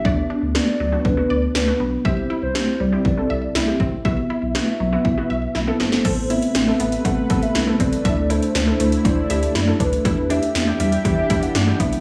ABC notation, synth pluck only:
X:1
M:4/4
L:1/16
Q:1/4=120
K:Ador
V:1 name="Synth pluck"
[B,DF]3 z [B,DF]2 z [B,DF]2 [B,DF]3 z [B,DF]2 z | [CEG]3 z [CEG]2 z [CEG]2 [CEA]3 z [CEG]2 z | [B,EF]3 z [B,EF]2 z [B,EF]2 [B,EF]3 z [B,EA]2 z | [B,CA]2 [B,CE]2 z [B,CA]2 z [B,CA]2 [B,CA]2 z [B,CA]2 z |
[DEA]2 [DEA]2 z [DEA]2 z [DEc]2 [DEG]2 z [DEA]2 z | [DEG]2 [DEG]2 z [DEG]2 z [DEG]2 [DEG]2 z [DEG]2 z |]